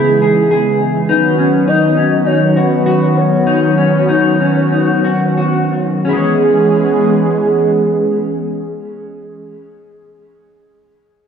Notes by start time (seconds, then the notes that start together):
Already playing: C#3 E3 G#3 B3 E4 G#4
0.22 G#4
0.51 G#4
1.09 D#3 F#3 B3 C#4 D#4 F#4 B4
1.39 C#4
1.68 D#4 D#5
1.97 C#4
2.27 D#4 C#5
2.56 F#4 B4
2.86 F#4
3.17 C#5
3.47 D#4
3.78 C#4
4.09 D#4
4.40 C#4
4.72 D#4
5.04 F#4
5.37 F#4
6.05 E3 G#3 B3 C#4 G#4
6.09 E4
6.13 G#4
6.17 C#5